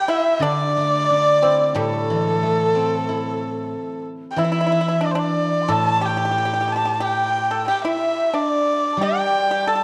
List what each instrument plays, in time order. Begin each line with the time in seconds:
Already playing: erhu G5
0.08 pipa E4, dizi E5, erhu E5
0.40 guzheng D3, pipa D4, dizi D5, erhu D5
0.77 guzheng A3
1.10 guzheng D4
1.42 pipa C4, guzheng E4
1.75 guzheng A2, pipa G3, erhu A4, dizi A4
2.10 guzheng E3
2.17 pipa G#3
2.43 pipa A3, guzheng A3
2.75 guzheng C4
3.09 guzheng E4
4.31 erhu G5
4.36 guzheng E3, pipa E4, dizi E5, erhu E5
4.44 pipa E4
4.52 pipa E4
4.61 pipa E4
4.67 pipa E4
4.72 pipa E4
4.81 pipa E4
4.88 pipa E4
5.01 pipa D4, dizi D5
5.06 erhu D5
5.11 erhu C5
5.15 pipa D4, dizi D5, erhu D5
5.62 dizi C6
5.68 guzheng A2, pipa A4, dizi A5, erhu A5
6.01 pipa G4, dizi G5
6.06 pipa G4, erhu G5
6.17 pipa G4
6.25 pipa G4
6.31 pipa G4
6.38 pipa G4
6.45 pipa G4
6.52 pipa G4, dizi G5
6.61 pipa G4
6.68 pipa G4, dizi A5
6.73 pipa G4, erhu A5
6.85 pipa G4
6.95 dizi A5
7.00 pipa G4, dizi G5
7.05 erhu G5
7.51 pipa A4
7.68 pipa G4, dizi G5, erhu G5
7.84 pipa E4, dizi E5, erhu E5
8.33 pipa D4, dizi D5, erhu D5
8.92 dizi A5
8.97 guzheng G3, dizi G5
9.01 pipa G4, erhu G5
9.49 pipa G4, dizi G5
9.65 pipa A4, dizi A5, erhu A5
9.75 pipa A4